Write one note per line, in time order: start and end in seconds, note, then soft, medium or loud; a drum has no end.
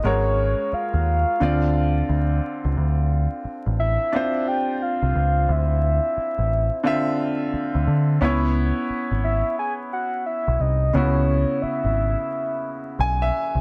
0.03 0.53 G#1 medium
0.03 1.37 G#3 medium
0.03 1.37 F#4 medium
0.03 1.38 A#4 medium
0.03 0.75 C#5 loud
0.03 1.38 C#5 medium
0.72 2.43 F5 loud
0.72 muted picked electric bass stroke soft
0.93 1.23 D#2 medium
1.40 2.01 D2 medium
1.40 4.08 D3 medium
1.40 4.09 C4 medium
1.40 4.09 F4 medium
1.40 4.10 D5 medium
2.09 2.39 D2 medium
2.64 2.75 C#2 medium
2.77 3.26 D2 medium
3.45 muted picked electric bass stroke soft
3.66 3.96 A1 medium
3.79 4.49 E5 loud
4.12 6.82 C4 medium
4.12 6.81 D4 medium
4.12 6.82 F4 medium
4.12 6.83 C5 medium
4.48 4.84 G5 loud
4.82 5.53 F5 loud
5.02 5.13 C2 medium
5.15 5.45 C#2 medium
5.49 5.98 D2 medium
5.49 7.54 E5 loud
6.17 muted picked electric bass stroke soft
6.38 6.69 A1 medium
6.83 8.18 D3 medium
6.83 8.18 C4 medium
6.83 8.19 F4 medium
6.83 8.20 E5 medium
7.53 muted picked electric bass stroke soft
7.75 7.86 D2 medium
7.87 8.18 D3 medium
8.21 8.71 C#2 loud
8.21 10.90 B3 medium
8.21 10.90 C#4 medium
8.21 10.91 E4 medium
8.21 10.92 C#5 medium
8.90 muted picked electric bass stroke soft
9.11 9.41 G#1 medium
9.24 9.56 E5 loud
9.59 9.73 G#5 medium
9.93 10.24 F#5 medium
10.26 10.62 E5 medium
10.48 10.59 B1 medium
10.60 10.90 C2 medium
10.60 10.96 D#5 medium
10.93 11.44 C#2 medium
10.93 13.61 C#3 medium
10.93 13.61 B3 medium
10.93 13.61 E4 medium
10.93 13.61 F#4 medium
10.93 11.63 C#5 loud
11.62 13.32 E5 loud
11.62 muted picked electric bass stroke soft
11.84 12.14 G#1 medium
12.99 13.29 B1 medium
12.99 13.19 G#5 medium
13.22 13.61 E5 medium
13.55 13.61 C2 medium